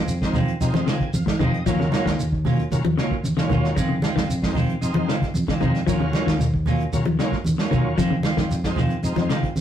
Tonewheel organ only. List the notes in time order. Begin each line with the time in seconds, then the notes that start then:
0.22 G#3 C4 D#4 F4
0.61 G#3 C4 D#4 F4
0.87 G#5
1.14 F5
1.40 G#3 C4 D#4 F4 D#5
1.67 F#3 A#3 C#4 F4
2.72 F#3 A#3 C#4 F4
2.98 F#3 A#3 C#4 F4
3.38 F#3 A#3 C#4 F4
4.43 G#3 C4 D#4 F4
4.81 G#3 C4 D#4 F4
5.60 G#3 C4 D#4 F4
5.87 F#3 A#3 C#4 F4
6.93 F#3 A#3 C#4 F4
7.19 F#3 A#3 C#4 F4
7.59 F#3 A#3 C#4 F4
8.64 G#3 C4 D#4 F4
9.03 G#3 C4 D#4 F4